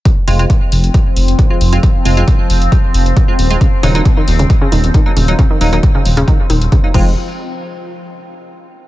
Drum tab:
CC |----------------|----------------|----------------|--------------x-|
HH |x-oxx-oxx-oxx-ox|x-oxx-oxx-oxx-ox|x-oxx-oxx-oxx-ox|x-oxx-oxx-oxx---|
BD |o---o---o---o---|o---o---o---o---|o---o---o---o---|o---o---o---o-o-|

CC |----------------|
HH |----------------|
BD |----------------|